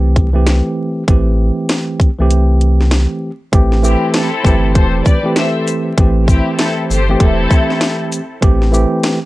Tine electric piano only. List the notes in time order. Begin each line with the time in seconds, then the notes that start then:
Already playing: E3 A3 C4 G4
0.33 E3 A3 C4 G4
1.08 E3 A3 C4 G4
2.19 E3 A3 C4 G4
3.52 E3 A3 C4 G4
3.82 E3 A3 C4 G4
4.44 E3 A3 C4 G4
5.23 E3 A3 C4 G4
5.98 E3 A3 C4 G4
7.09 E3 A3 C4 G4
8.41 E3 A3 C4 G4
8.72 E3 A3 C4 G4